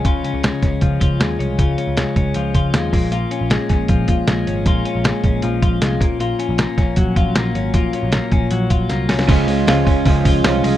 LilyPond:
<<
  \new Staff \with { instrumentName = "Clean electric guitar" } { \time 4/4 \key des \major \tempo 4 = 156 <des f aes des' f'>8 des'8 aes8 des'8 f8 f'8 aes8 des'8 | <des f'>8 des'8 aes8 des'8 f8 f'8 aes8 bes,8 | <bes, f'>8 des'8 aes8 des'8 f8 f'8 aes8 des'8 | <bes, f'>8 des'8 aes8 des'8 f8 f'8 aes8 bes,8 |
<bes, f'>8 des'8 bes8 des'8 ges8 f'8 bes8 des'8 | <bes, f'>8 des'8 bes8 des'8 ges8 f'8 bes8 des'8 | <des f'>8 aes8 f'8 des'8 f8 f'8 des'8 aes8 | }
  \new Staff \with { instrumentName = "Clean electric guitar" } { \time 4/4 \key des \major r1 | r1 | r1 | r1 |
r1 | r1 | <des f aes des' f'>8 <aes des' f'>8 <f aes des' f'>8 <aes des' f'>8 <des f aes des' f'>8 <aes des' f'>8 <f aes des' f'>8 <aes des' f'>8 | }
  \new Staff \with { instrumentName = "Picked electric bass" } { \clef bass \time 4/4 \key des \major des,8 r16 des,8 r16 des,8 des,8 des,8 ees,8 c,8 | des,8 r16 des,8 r16 des,8 des,8 des,8 ees,8 bes,,8~ | bes,,8 r16 bes,,8 r16 bes,,8 bes,,8 bes,,8 bes,,8 aes,,8 | bes,,8 r16 bes,,8 r16 bes,,8 bes,,8 bes,,8 c,8 bes,,8~ |
bes,,8 r16 bes,,8 r16 bes,,8 bes,,8 bes,,8 bes,,8 aes,,8 | bes,,8 r16 bes,,8 r16 bes,,8 bes,,8 bes,,8 c,8 c,8 | des,8 des,8 des,8 des,8 des,8 des,8 c,8 c,8 | }
  \new DrumStaff \with { instrumentName = "Drums" } \drummode { \time 4/4 <hh bd>8 hh8 <hh sn>8 <hh bd sn>8 <hh bd>8 <hh bd>8 <hh sn>8 hh8 | <hh bd>8 hh8 <hh sn>8 <hh bd>8 hh8 <hh bd>8 <hh sn>8 <hho bd>8 | hh8 hh8 <hh sn>8 <hh bd sn>8 <hh bd>8 <hh bd>8 <hh sn>8 hh8 | <hh bd>8 hh8 <hh sn>8 <hh bd>8 hh8 <hh bd>8 <hh sn>8 <hh bd>8 |
hh8 hh8 <hh sn>8 <hh bd sn>8 <hh bd>8 <hh bd>8 <hh sn>8 hh8 | <hh bd>8 hh8 <hh sn>8 <hh bd>8 hh8 <hh bd>8 <hh sn>8 <hho sn>16 sn16 | <cymc hho bd>8 hho8 <hho sn>8 <hho bd>8 <hho bd>8 <hho bd>8 <hho sn>8 hho8 | }
>>